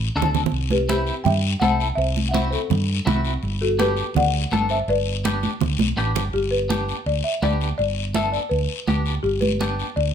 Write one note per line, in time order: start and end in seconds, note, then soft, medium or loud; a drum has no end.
0.00 0.31 B4 medium
0.00 0.30 D5 medium
0.15 0.45 D2 medium
0.15 0.41 D4 medium
0.15 0.42 F#4 medium
0.15 0.42 A4 loud
0.15 short guiro medium
0.22 low conga loud
0.34 low conga medium
0.34 short guiro medium
0.46 low conga medium
0.52 1.10 C2 medium
0.52 high conga soft
0.52 long guiro medium
0.70 0.80 G4 medium
0.70 0.79 B4 medium
0.70 high conga medium
0.89 1.14 C4 medium
0.89 1.14 E4 medium
0.89 1.15 G4 medium
0.89 1.23 G4 medium
0.89 1.23 C5 medium
0.89 high conga medium
0.89 short guiro medium
1.07 short guiro medium
1.24 1.54 G2 medium
1.24 1.59 E5 medium
1.24 1.62 G5 loud
1.24 high conga soft
1.24 low conga medium
1.24 long guiro medium
1.60 1.90 C2 medium
1.60 1.87 C4 medium
1.60 1.87 E4 medium
1.60 1.87 A4 medium
1.60 1.96 C5 medium
1.60 1.94 F#5 loud
1.60 high conga medium
1.60 short guiro medium
1.80 short guiro medium
1.95 2.56 C2 medium
1.95 2.27 C5 medium
1.95 2.26 E5 loud
1.95 high conga soft
1.95 long guiro medium
2.17 high conga medium
2.29 2.40 E5 medium
2.29 2.34 F#5 medium
2.34 2.59 C4 medium
2.34 2.59 E4 medium
2.34 2.60 F#4 medium
2.34 2.42 C5 medium
2.34 high conga medium
2.34 short guiro medium
2.51 3.21 A4 medium
2.51 3.20 C5 medium
2.51 short guiro medium
2.70 2.99 G2 loud
2.70 high conga soft
2.70 low conga medium
2.70 long guiro medium
3.06 3.36 C2 medium
3.06 3.32 C4 medium
3.06 3.32 E4 medium
3.06 3.32 F#4 medium
3.06 high conga medium
3.06 low conga medium
3.06 short guiro medium
3.25 short guiro medium
3.43 4.01 G1 medium
3.43 high conga soft
3.43 long guiro medium
3.61 3.70 F#4 medium
3.61 3.69 A4 medium
3.79 4.05 B3 medium
3.79 4.05 D4 medium
3.79 4.05 G4 medium
3.79 4.14 G4 medium
3.79 4.13 B4 medium
3.79 high conga medium
3.79 short guiro medium
3.97 short guiro medium
4.14 4.44 D2 medium
4.14 4.67 D5 medium
4.14 4.72 F#5 loud
4.14 high conga soft
4.14 low conga loud
4.14 long guiro medium
4.51 4.81 G1 medium
4.51 4.77 B3 medium
4.51 4.78 D4 medium
4.51 4.78 A4 medium
4.51 high conga medium
4.51 short guiro medium
4.69 4.78 C5 medium
4.69 4.79 E5 medium
4.69 short guiro medium
4.88 5.46 G1 medium
4.88 5.94 B4 medium
4.88 5.94 D5 medium
4.88 high conga soft
4.88 long guiro medium
5.24 5.50 B3 medium
5.24 5.50 D4 medium
5.24 5.50 G4 medium
5.24 high conga medium
5.24 short guiro medium
5.43 high conga medium
5.43 short guiro medium
5.61 5.75 D2 loud
5.61 high conga soft
5.61 low conga medium
5.61 long guiro medium
5.79 5.95 B1 medium
5.79 high conga loud
5.97 6.13 A1 medium
5.97 6.23 B3 medium
5.97 6.23 D4 medium
5.97 6.23 G4 medium
5.97 short guiro medium
6.15 6.32 G1 medium
6.15 low conga medium
6.15 short guiro medium
6.33 6.92 G1 medium
6.33 6.42 G4 medium
6.33 high conga soft
6.33 long guiro medium
6.51 7.02 B4 medium
6.69 6.95 B3 medium
6.69 6.95 D4 medium
6.69 6.95 G4 medium
6.69 high conga medium
6.69 short guiro medium
6.89 short guiro medium
7.06 7.21 D2 medium
7.06 7.23 D5 medium
7.06 high conga soft
7.06 long guiro medium
7.24 7.41 E5 loud
7.42 7.71 D2 medium
7.42 7.68 B3 medium
7.42 7.68 D4 soft
7.42 7.68 G4 medium
7.42 7.77 D5 medium
7.42 high conga medium
7.42 short guiro medium
7.61 short guiro medium
7.78 8.37 G1 medium
7.78 8.16 D5 loud
7.78 high conga soft
7.78 long guiro medium
8.14 8.41 B3 medium
8.14 8.41 D4 medium
8.14 8.41 A4 medium
8.14 8.32 E5 medium
8.14 high conga medium
8.14 short guiro medium
8.32 8.41 D5 medium
8.32 short guiro medium
8.49 8.66 D2 medium
8.49 8.84 B4 medium
8.49 high conga soft
8.49 long guiro medium
8.87 9.17 D2 medium
8.87 9.13 B3 medium
8.87 9.13 D4 soft
8.87 9.14 G4 medium
8.87 high conga medium
8.87 short guiro medium
9.06 short guiro medium
9.23 9.82 G1 loud
9.23 9.31 G4 medium
9.23 high conga soft
9.23 long guiro medium
9.41 9.98 B4 medium
9.41 high conga medium
9.61 9.86 B3 medium
9.61 9.86 D4 medium
9.61 9.86 G4 medium
9.61 high conga medium
9.61 short guiro medium
9.79 short guiro medium
9.96 10.11 D2 medium
9.96 10.14 D5 loud
9.96 high conga soft
9.96 long guiro medium